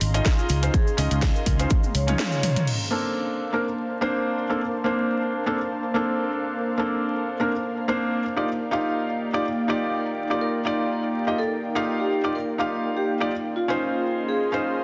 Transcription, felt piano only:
0.14 C#4 D#4 F4 D#5
0.62 C#4 D#4 F4 C5
0.97 C#4 D#4 F4 D#5
1.59 C#4 D#4 F4 C5
2.07 C#4 D#4 F4 C#5
2.91 A#3 C4 D4 A4
3.53 A#3 C4 D4 A#4
4.01 A#3 C4 D4 C5
4.49 A#3 C4 D4 A4
4.84 A#3 C4 D4 C5
5.46 A#3 C4 D4 A4
5.94 A#3 C4 D4 A4
6.78 A#3 C4 D4 A4
7.40 A#3 C4 D4 A#4
7.88 A#3 C4 D4 C5
8.36 D#4 F4 G4 D5
8.71 D#4 F4 G4 F5
9.33 D#4 F4 G4 D5
9.68 D#4 F4 G4 D5
10.30 D#4 F4 G4 D5
10.65 D#4 F4 G4 D5
11.27 D#4 F4 G4 D#5
11.75 D#4 F4 G4 F5
12.24 D#4 F4 G4 D5
12.58 D#4 F4 G4 F5
13.20 D#4 F4 G4 D5
13.68 C#4 D#4 F4 C5
14.52 C#4 D#4 F4 C5

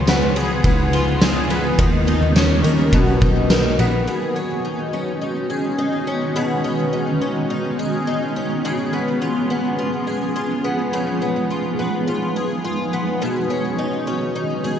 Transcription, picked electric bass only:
Already playing: C#2
0.64 C#2
1.79 D#2
2.21 D#2
2.64 D#2
2.93 B1
3.22 B1
3.79 A#1

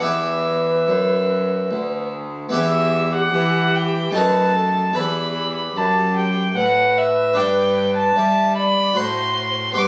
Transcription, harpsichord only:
Already playing: B3
0.00 E2 E4 G4
0.88 F#2
1.71 D2
2.49 B3 E4 G4
2.54 E2
3.34 E3
4.11 A3 D#4 F#4
4.15 F#2
4.93 E2 E4 B4
5.77 F#2
6.57 A2
7.33 G2 D4 B4
8.16 G3
8.93 A2 F#4 C5
9.72 B3 G4 B4
9.77 G2

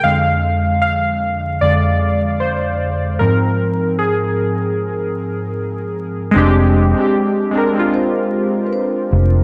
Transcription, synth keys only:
0.04 F2 D3 G#3 F5
0.82 F5
1.61 F2 D3 G#3 D5
2.40 C5
3.19 G#2 F3 C4 A#4
3.99 G#4
6.31 G#3 C4
6.35 D4 G4
6.94 G#3 C4
6.98 D4 G4
7.51 G#3 C4
7.55 D4 A#4
7.73 G#3 C4
7.77 D4 F4

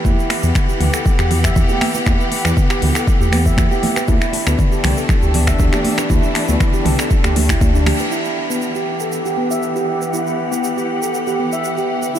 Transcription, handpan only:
0.05 E4
0.43 B3
0.69 G4
0.94 A4
1.19 G4
1.31 B3
1.44 E5
1.70 G4
1.95 B4
2.06 E4
2.45 B3
2.70 G4
2.95 A4
3.21 G4
3.33 B3
3.46 E5
3.71 G4
3.97 B4
4.08 E4
4.47 B3
4.72 G4
4.97 A4
5.22 G4
5.34 B3
5.48 E5
5.73 G4
5.98 B4
6.10 E4
6.49 B3
6.74 G4
6.99 A4
7.24 G4
7.36 G4
7.49 E4
7.75 D4
7.87 G4
8.00 B4
8.12 E4
8.50 B3
8.75 G4
9.01 A4
9.26 G4
9.38 B3
9.51 E5
9.76 G4
10.01 B4
10.13 E4
10.52 B3
10.77 G4
11.02 A4
11.27 G4
11.39 B3
11.53 E5
11.78 G4
12.03 B4
12.15 E4

